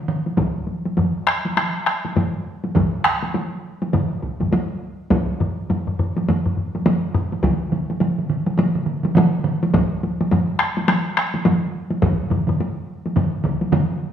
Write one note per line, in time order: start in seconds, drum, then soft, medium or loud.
0.08 taiko mid loud
0.26 taiko high soft
0.37 taiko medium
0.37 taiko low-mid medium
0.37 taiko high medium
0.67 taiko high soft
0.85 taiko high soft
0.97 taiko low-mid medium
0.97 taiko high medium
1.27 taiko rim medium
1.45 taiko high soft
1.57 taiko rim medium
1.57 taiko high soft
1.86 taiko rim medium
2.05 taiko high soft
2.16 taiko low-mid medium
2.16 taiko high medium
2.64 taiko high soft
2.75 taiko loud
2.75 taiko low-mid medium
2.75 taiko mid medium
2.75 taiko high medium
3.04 taiko rim medium
3.23 taiko high soft
3.34 taiko high medium
3.82 taiko high medium
3.93 taiko low-mid loud
3.93 taiko mid medium
3.93 taiko high medium
4.22 taiko medium
4.40 taiko low-mid medium
4.40 taiko mid medium
4.40 taiko high medium
4.51 taiko medium
4.51 taiko high medium
5.10 taiko loud
5.10 taiko low-mid medium
5.10 taiko high medium
5.40 taiko low-mid medium
5.40 taiko high soft
5.70 taiko low-mid medium
5.70 taiko high medium
5.87 taiko low-mid medium
5.99 taiko low-mid medium
6.17 taiko high medium
6.28 taiko low-mid medium
6.28 taiko high medium
6.46 taiko low-mid medium
6.57 taiko low-mid medium
6.75 taiko low-mid medium
6.75 taiko high soft
6.86 taiko low-mid loud
6.86 taiko high medium
7.15 taiko low-mid loud
7.32 taiko high soft
7.43 taiko medium
7.43 taiko mid medium
7.43 taiko high medium
7.72 taiko mid medium
7.72 taiko high soft
7.90 taiko high soft
8.00 taiko mid medium
8.00 taiko high medium
8.18 taiko mid medium
8.30 taiko mid medium
8.46 taiko high medium
8.58 taiko mid medium
8.58 taiko high medium
8.75 taiko mid medium
8.86 taiko mid medium
9.03 taiko mid medium
9.03 taiko high medium
9.15 taiko mid loud
9.15 taiko high medium
9.44 taiko mid loud
9.63 taiko high medium
9.74 taiko loud
9.74 taiko low-mid medium
9.74 taiko high medium
10.03 taiko high medium
10.21 taiko high medium
10.31 taiko low-mid medium
10.31 taiko high medium
10.59 taiko rim medium
10.77 taiko high medium
10.88 taiko rim medium
10.88 taiko high medium
11.17 taiko rim medium
11.34 taiko high medium
11.45 taiko low-mid medium
11.45 taiko high medium
11.90 taiko high medium
12.02 taiko loud
12.02 taiko low-mid medium
12.02 taiko mid medium
12.02 taiko high medium
12.30 taiko low-mid medium
12.30 taiko mid medium
12.30 taiko high soft
12.47 taiko low-mid loud
12.47 taiko mid medium
12.47 taiko high medium
12.61 taiko high medium
13.06 taiko high soft
13.16 taiko low-mid loud
13.16 taiko mid medium
13.16 taiko high medium
13.44 taiko medium
13.44 taiko low-mid medium
13.44 taiko mid medium
13.61 taiko high medium
13.72 taiko low-mid medium
13.72 taiko mid loud
13.72 taiko high medium